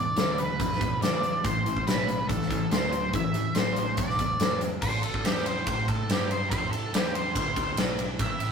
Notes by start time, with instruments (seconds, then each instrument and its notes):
Already playing: overdriven electric guitar E2 B2, picked electric bass E2, lead electric guitar D5
0.17 picked electric bass D2, overdriven electric guitar E2 C#3, snare, closed hi-hat
0.38 overdriven electric guitar E2 C#3, lead electric guitar B4, closed hi-hat
0.59 overdriven electric guitar E2 B2, picked electric bass F2, kick, closed hi-hat
0.72 snare
0.80 overdriven electric guitar E2 B2, kick, closed hi-hat
1.01 overdriven electric guitar E2 C#3, picked electric bass E2, lead electric guitar D5, snare, closed hi-hat
1.22 overdriven electric guitar E2 C#3, closed hi-hat
1.44 picked electric bass A1, overdriven electric guitar A2 E3, lead electric guitar C5, kick, closed hi-hat
1.66 overdriven electric guitar A2 E3, closed hi-hat
1.77 kick
1.87 picked electric bass B1, overdriven electric guitar A2 F#3, lead electric guitar B4, snare, closed hi-hat
2.07 overdriven electric guitar A2 F#3, closed hi-hat
2.29 picked electric bass C2, overdriven electric guitar A2 E3, lead electric guitar A4, kick, closed hi-hat
2.42 snare
2.50 overdriven electric guitar A2 E3, muted picked electric bass stroke, kick, closed hi-hat
2.71 picked electric bass D2, overdriven electric guitar A2 F#3, lead electric guitar C5, snare, closed hi-hat
2.92 overdriven electric guitar A2 F#3, closed hi-hat
3.13 picked electric bass E2, overdriven electric guitar A2 E3, lead electric guitar E5, kick, closed hi-hat
3.34 overdriven electric guitar A2 E3, closed hi-hat
3.55 picked electric bass A1, overdriven electric guitar A2 F#3, lead electric guitar C5, snare, closed hi-hat
3.76 overdriven electric guitar A2 F#3, closed hi-hat
3.97 picked electric bass E1, overdriven electric guitar E2 B2, lead electric guitar D5, kick, closed hi-hat
4.10 snare
4.19 overdriven electric guitar E2 B2, kick, closed hi-hat
4.39 picked electric bass F1, overdriven electric guitar E2 C#3, snare, closed hi-hat
4.60 overdriven electric guitar E2 C#3, closed hi-hat
4.82 picked electric bass A1, lead electric guitar C5, kick, crash
5.03 lead electric guitar A4, ride
5.14 kick
5.25 picked electric bass E2, lead electric guitar G4, snare, ride
5.37 snare
5.46 lead electric guitar C5, ride
5.67 picked electric bass A2, lead electric guitar C5, kick, ride
5.88 lead electric guitar A4, kick, ride
6.09 picked electric bass G2, lead electric guitar G4, snare, ride
6.31 lead electric guitar C5, ride
6.50 picked electric bass F2, lead electric guitar C5, kick, ride
6.71 lead electric guitar A4, muted picked electric bass stroke, ride
6.93 picked electric bass E2, lead electric guitar G4, snare, ride
7.06 snare
7.15 lead electric guitar C5, ride
7.35 picked electric bass D2, lead electric guitar C5, kick, ride
7.56 kick, ride
7.77 picked electric bass B1, snare, ride
7.99 ride
8.19 picked electric bass A1, lead electric guitar E5, kick, ride
8.40 ride